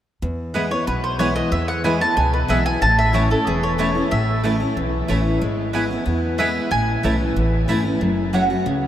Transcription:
0.22 steel-string acoustic guitar E2, upright bass E2
0.54 steel-string acoustic guitar E3 G#3 B3 E4, mandolin B3 E4 B4 G#5
0.71 steel-string acoustic guitar B3 E4, mandolin C#5
0.87 upright bass B1, steel-string acoustic guitar B2, mandolin B4
1.04 mandolin C5
1.19 steel-string acoustic guitar E3 G#3 B3 E4, mandolin B3 E4 B4 C#5 G#5
1.36 mandolin D#5
1.52 upright bass E2, steel-string acoustic guitar E2, mandolin E5
1.68 mandolin F#5
1.84 steel-string acoustic guitar E3 G#3 B3 E4, mandolin B3 E4 B4 G#5
2.01 steel-string acoustic guitar B3 E4, mandolin A5
2.17 upright bass C#2, steel-string acoustic guitar B2, mandolin G#5
2.33 mandolin B4
2.48 upright bass B1, steel-string acoustic guitar E3 G#3 B3 E4, mandolin B3 E4 B4 E5 G#5
2.65 steel-string acoustic guitar B3 E4, mandolin G#5
2.82 upright bass A1, steel-string acoustic guitar A2, mandolin A5
2.99 mandolin E5
3.13 steel-string acoustic guitar E3 A3 C#4 E4, mandolin A3 E4 C#5 A5
3.30 steel-string acoustic guitar C#4 E4, mandolin A4
3.47 upright bass E1, steel-string acoustic guitar E2, mandolin G#4
3.63 mandolin C#5
3.78 steel-string acoustic guitar E3 A3 C#4 E4, mandolin A3 E4 C#5 A5
3.95 steel-string acoustic guitar C#4 E4
4.11 upright bass A1, steel-string acoustic guitar A2, mandolin E5
4.43 steel-string acoustic guitar E3 A3 C#4 E4, mandolin A3 E4 C#5 A5
4.60 steel-string acoustic guitar C#4 E4
4.76 upright bass B1, steel-string acoustic guitar E2
5.08 upright bass A1, steel-string acoustic guitar E3 A3 C#4 E4, mandolin A3 E4 C#5 A5
5.41 upright bass G#1, steel-string acoustic guitar G#3
5.73 steel-string acoustic guitar G#3 B3 E4, mandolin B3 E4 B4 G#5
5.91 steel-string acoustic guitar B3 E4
6.06 upright bass E2, steel-string acoustic guitar B3
6.38 steel-string acoustic guitar G#3 B3 E4, mandolin B3 E4 B4 E5 G#5
6.71 upright bass A1, steel-string acoustic guitar A2, mandolin G#5
7.03 upright bass B1, steel-string acoustic guitar E3 A3 C#4 E4, mandolin A3 E4 C#5 A5
7.36 upright bass A1, steel-string acoustic guitar E2
7.68 upright bass G#1, steel-string acoustic guitar E3 A3 C#4 E4, mandolin A3 E4 C#5 A5
7.85 steel-string acoustic guitar C#4 E4
8.01 upright bass F#1, steel-string acoustic guitar F#2
8.33 steel-string acoustic guitar F#3 A3 C#4 F#4, mandolin A3 F#4 C#5 F#5
8.50 steel-string acoustic guitar C#4 F#4
8.66 upright bass C#2, steel-string acoustic guitar C#3

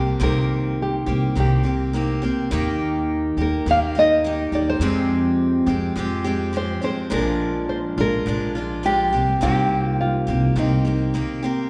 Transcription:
Already playing: upright bass C2, steel-string acoustic guitar A#3 C4 G4, nylon-string guitar G4
0.20 upright bass C2, steel-string acoustic guitar C3 D#3 A#3 C4 G4, nylon-string guitar A#4
0.82 nylon-string guitar G4
1.06 upright bass C2, steel-string acoustic guitar A#3 C4 G4
1.35 upright bass C2, steel-string acoustic guitar D#3 A#3 C4 G4
1.40 nylon-string guitar G4
1.63 steel-string acoustic guitar A#3 C4 G4
1.93 steel-string acoustic guitar D#3 A#3 C4 G4
2.22 steel-string acoustic guitar A#3 C4 G4
2.51 upright bass D#2, steel-string acoustic guitar D#3 A#3 D#4 G4
3.37 upright bass D#2, steel-string acoustic guitar A#3 D#4 G4
3.42 nylon-string guitar A#4
3.66 upright bass D#2, steel-string acoustic guitar D#3 A#3 D#4 G4
3.71 nylon-string guitar F5
3.95 steel-string acoustic guitar A#3 D#4 G4, nylon-string guitar D#5
4.24 steel-string acoustic guitar D#3 A#3 D#4 G4
4.52 upright bass D#2, steel-string acoustic guitar A#3 D#4 G4, nylon-string guitar D5
4.69 nylon-string guitar C5
4.80 upright bass F2, steel-string acoustic guitar F2 C3 F3 G#3 C4 G4
5.66 upright bass F2, steel-string acoustic guitar F3 G#3 C4 G4
5.96 upright bass F2, steel-string acoustic guitar F3 G#3 C4 G4
6.24 steel-string acoustic guitar F3 G#3 C4 G4
6.53 steel-string acoustic guitar F3 G#3 C4 G4
6.57 nylon-string guitar C5
6.82 steel-string acoustic guitar F3 G#3 C4 G4, nylon-string guitar C5
7.10 upright bass A#1, steel-string acoustic guitar A#2 F3 G#3 D4 F4, nylon-string guitar A#4
7.69 nylon-string guitar C5
7.98 upright bass A#1, steel-string acoustic guitar G#3 D4 F4, nylon-string guitar A#4
8.26 upright bass A#1, steel-string acoustic guitar F3 G#3 D4 F4
8.55 steel-string acoustic guitar G#3 D4 F4
8.83 steel-string acoustic guitar F3 G#3 D4 F4, nylon-string guitar G4
9.12 upright bass C2, steel-string acoustic guitar A#3 C4 G4
9.41 upright bass C2, steel-string acoustic guitar C3 D#3 A#3 C4 G4, nylon-string guitar G4
9.89 nylon-string guitar F4
10.01 nylon-string guitar F4
10.27 upright bass C2, steel-string acoustic guitar A#3 C4 G4
10.56 upright bass C2, steel-string acoustic guitar D#3 A#3 C4 G4, nylon-string guitar D#4
10.85 steel-string acoustic guitar A#3 C4 G4
11.14 steel-string acoustic guitar D#3 A#3 C4 G4
11.42 steel-string acoustic guitar A#3 C4 G4

